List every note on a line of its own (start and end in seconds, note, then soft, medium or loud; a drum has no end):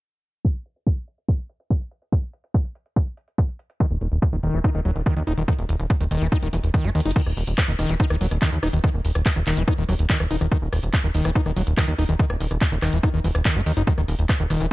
0.45 kick loud
0.55 closed hi-hat medium
0.66 closed hi-hat medium
0.76 closed hi-hat medium
0.87 kick loud
0.97 closed hi-hat medium
1.08 closed hi-hat medium
1.18 closed hi-hat medium
1.29 kick loud
1.39 closed hi-hat medium
1.50 closed hi-hat medium
1.60 closed hi-hat medium
1.70 kick loud
1.81 closed hi-hat medium
1.91 closed hi-hat medium
2.02 closed hi-hat medium
2.12 kick loud
2.12 closed hi-hat medium
2.23 closed hi-hat medium
2.33 closed hi-hat medium
2.44 closed hi-hat medium
2.54 kick loud
2.54 closed hi-hat medium
2.65 closed hi-hat medium
2.75 closed hi-hat medium
2.86 closed hi-hat medium
2.96 kick loud
2.96 closed hi-hat medium
3.07 closed hi-hat medium
3.17 closed hi-hat medium
3.28 closed hi-hat medium
3.38 kick loud
3.38 closed hi-hat medium
3.49 closed hi-hat medium
3.59 closed hi-hat medium
3.70 closed hi-hat medium
3.80 3.86 D#3 loud
3.80 kick loud
3.80 closed hi-hat medium
3.91 3.97 D#1 medium
3.91 closed hi-hat soft
4.01 4.08 D#1 loud
4.01 closed hi-hat medium
4.12 4.18 D#1 medium
4.12 closed hi-hat soft
4.22 kick loud
4.22 closed hi-hat medium
4.33 4.39 D#1 medium
4.33 4.36 D#3 medium
4.33 closed hi-hat medium
4.43 4.49 D#1 loud
4.43 4.55 D#3 medium
4.43 closed hi-hat medium
4.54 4.60 D#1 medium
4.54 4.59 E3 medium
4.54 closed hi-hat soft
4.64 4.70 D#4 loud
4.64 kick loud
4.64 closed hi-hat medium
4.75 4.81 D#1 medium
4.75 4.80 D#3 loud
4.75 closed hi-hat soft
4.85 4.91 D#1 loud
4.85 4.91 F#3 medium
4.85 closed hi-hat medium
4.96 5.02 D#1 medium
4.96 closed hi-hat medium
5.06 5.14 D#3 loud
5.06 kick loud
5.06 closed hi-hat medium
5.17 5.23 D#2 medium
5.17 5.20 D#3 medium
5.17 closed hi-hat medium
5.27 5.33 D#1 medium
5.27 5.33 D#4 medium
5.27 closed hi-hat medium
5.38 5.44 D#1 medium
5.38 5.43 D#3 medium
5.38 closed hi-hat soft
5.48 5.54 D#3 loud
5.48 kick loud
5.48 closed hi-hat medium
5.59 5.65 D#1 medium
5.59 closed hi-hat soft
5.69 5.75 D#1 loud
5.69 closed hi-hat medium
5.80 5.86 D#1 medium
5.80 closed hi-hat soft
5.90 kick loud
5.90 closed hi-hat medium
6.01 6.07 D#1 medium
6.01 6.04 D#3 medium
6.01 closed hi-hat medium
6.11 6.17 D#1 loud
6.11 6.23 D#3 medium
6.11 closed hi-hat medium
6.22 6.28 D#1 medium
6.22 6.27 E3 medium
6.22 closed hi-hat soft
6.32 6.37 D#4 loud
6.32 kick loud
6.32 closed hi-hat medium
6.43 6.49 D#1 medium
6.43 6.48 D#3 loud
6.43 closed hi-hat soft
6.53 6.59 D#1 loud
6.53 6.56 E3 medium
6.53 closed hi-hat medium
6.63 6.70 D#1 medium
6.63 closed hi-hat medium
6.74 6.86 D#3 medium
6.74 kick loud
6.74 closed hi-hat medium
6.84 6.91 F#1 medium
6.84 6.90 A#3 medium
6.84 closed hi-hat soft
6.95 7.01 D#2 loud
6.95 7.00 D#3 medium
6.95 closed hi-hat medium
7.00 closed hi-hat medium
7.05 7.12 F#1 loud
7.05 7.11 D#4 medium
7.05 closed hi-hat medium
7.11 closed hi-hat medium
7.16 7.21 D#3 loud
7.16 kick loud
7.16 crash loud
7.26 7.33 D#1 medium
7.26 cross-stick soft
7.37 7.43 D#1 loud
7.37 open hi-hat loud
7.47 7.54 D#1 medium
7.47 closed hi-hat medium
7.58 kick loud
7.58 cross-stick medium
7.58 clap loud
7.58 closed hi-hat medium
7.68 7.75 D#1 medium
7.68 7.72 D#3 medium
7.79 7.85 D#1 loud
7.79 7.91 D#3 medium
7.79 cross-stick soft
7.79 open hi-hat loud
7.89 7.96 D#1 medium
7.89 7.95 E3 medium
7.89 closed hi-hat medium
8.00 8.05 D#4 loud
8.00 kick loud
8.00 closed hi-hat medium
8.10 8.17 D#1 medium
8.10 8.16 D#3 loud
8.10 cross-stick medium
8.21 8.27 D#1 loud
8.21 8.26 F#3 medium
8.21 open hi-hat loud
8.31 8.38 D#1 medium
8.31 cross-stick soft
8.31 closed hi-hat medium
8.42 8.50 D#3 loud
8.42 kick loud
8.42 clap loud
8.42 closed hi-hat medium
8.52 8.59 D#2 medium
8.52 8.56 D#3 medium
8.63 8.69 D#1 loud
8.63 8.68 D#4 medium
8.63 cross-stick medium
8.63 open hi-hat loud
8.73 8.80 D#1 medium
8.73 8.79 D#3 medium
8.73 closed hi-hat medium
8.84 8.89 D#3 loud
8.84 kick loud
8.84 cross-stick soft
8.84 closed hi-hat medium
8.94 9.01 D#1 medium
9.05 9.11 D#1 loud
9.05 open hi-hat loud
9.15 9.22 D#1 medium
9.15 cross-stick medium
9.15 closed hi-hat medium
9.26 kick loud
9.26 clap loud
9.26 closed hi-hat medium
9.36 9.42 D#1 medium
9.36 9.39 D#3 medium
9.36 cross-stick soft
9.47 9.53 D#1 loud
9.47 9.59 D#3 medium
9.47 clap medium
9.47 open hi-hat loud
9.57 9.63 D#1 medium
9.57 9.63 E3 medium
9.57 closed hi-hat medium
9.68 9.73 D#4 loud
9.68 kick loud
9.68 cross-stick medium
9.68 closed hi-hat medium
9.78 9.84 D#1 medium
9.78 9.84 D#3 loud
9.89 9.95 D#1 loud
9.89 9.94 F#3 medium
9.89 cross-stick soft
9.89 open hi-hat loud
9.99 10.05 D#1 medium
9.99 closed hi-hat medium
10.10 10.18 D#3 loud
10.10 kick loud
10.10 clap loud
10.10 closed hi-hat medium
10.20 10.26 D#1 medium
10.20 10.23 D#3 medium
10.20 cross-stick medium
10.31 10.37 D#1 loud
10.31 10.36 D#4 medium
10.31 open hi-hat loud
10.41 10.47 D#1 medium
10.41 10.47 D#3 medium
10.41 cross-stick soft
10.41 closed hi-hat medium
10.52 10.57 D#3 loud
10.52 kick loud
10.52 closed hi-hat medium
10.62 10.68 D#1 medium
10.73 10.79 D#1 loud
10.73 cross-stick medium
10.73 open hi-hat loud
10.83 10.89 D#1 medium
10.83 closed hi-hat medium
10.94 kick loud
10.94 cross-stick soft
10.94 clap loud
10.94 closed hi-hat medium
11.04 11.10 D#1 medium
11.04 11.07 D#3 medium
11.15 11.21 D#1 loud
11.15 11.27 D#3 medium
11.15 open hi-hat loud
11.25 11.31 D#1 medium
11.25 11.30 E3 medium
11.25 cross-stick medium
11.25 closed hi-hat medium
11.36 11.41 D#4 loud
11.36 kick loud
11.36 closed hi-hat medium
11.46 11.52 D#1 medium
11.46 11.51 D#3 loud
11.46 cross-stick soft
11.56 11.63 D#1 loud
11.56 11.62 F#3 medium
11.56 open hi-hat loud
11.67 11.73 D#1 medium
11.67 closed hi-hat medium
11.77 11.86 D#3 loud
11.77 kick loud
11.77 cross-stick medium
11.77 clap loud
11.77 closed hi-hat medium
11.88 11.94 D#2 medium
11.88 11.91 D#3 medium
11.98 12.05 D#1 medium
11.98 12.04 D#4 medium
11.98 cross-stick soft
11.98 open hi-hat loud
12.09 12.15 D#1 medium
12.09 12.14 D#3 medium
12.09 closed hi-hat medium
12.19 12.25 D#3 loud
12.19 kick loud
12.19 closed hi-hat medium
12.30 12.36 D#1 medium
12.30 cross-stick medium
12.40 12.47 D#1 loud
12.40 open hi-hat loud
12.51 12.57 D#1 medium
12.51 cross-stick soft
12.51 closed hi-hat medium
12.61 kick loud
12.61 clap loud
12.61 closed hi-hat medium
12.72 12.78 D#1 medium
12.72 12.75 D#3 medium
12.82 12.89 D#1 loud
12.82 12.94 D#3 medium
12.82 cross-stick medium
12.82 clap medium
12.82 open hi-hat loud
12.93 12.99 D#1 medium
12.93 12.98 E3 medium
12.93 closed hi-hat medium
13.03 13.09 D#4 loud
13.03 kick loud
13.03 cross-stick soft
13.03 closed hi-hat medium
13.14 13.20 D#1 medium
13.14 13.19 D#3 loud
13.24 13.31 D#1 loud
13.24 13.28 E3 medium
13.24 open hi-hat loud
13.35 13.41 D#1 medium
13.35 cross-stick medium
13.35 closed hi-hat medium
13.45 13.57 D#3 medium
13.45 kick loud
13.45 clap loud
13.45 closed hi-hat medium
13.56 13.62 F#1 medium
13.56 13.61 A#3 medium
13.56 cross-stick soft
13.66 13.73 D#2 loud
13.66 13.72 D#3 medium
13.66 open hi-hat loud
13.77 13.83 F#1 medium
13.77 13.82 D#4 medium
13.77 closed hi-hat medium
13.87 13.93 D#3 loud
13.87 kick loud
13.87 closed hi-hat medium
13.98 14.04 D#1 medium
13.98 14.01 D#3 loud
13.98 cross-stick soft
14.08 14.15 D#1 loud
14.08 open hi-hat loud
14.19 14.25 D#1 medium
14.19 closed hi-hat medium
14.29 kick loud
14.29 cross-stick medium
14.29 clap loud
14.29 closed hi-hat medium
14.40 14.46 D#1 medium
14.40 14.43 D#3 medium
14.50 14.56 D#1 loud
14.50 14.62 D#3 medium
14.50 cross-stick soft
14.50 open hi-hat loud
14.61 14.67 D#1 medium
14.61 14.66 E3 medium
14.61 closed hi-hat medium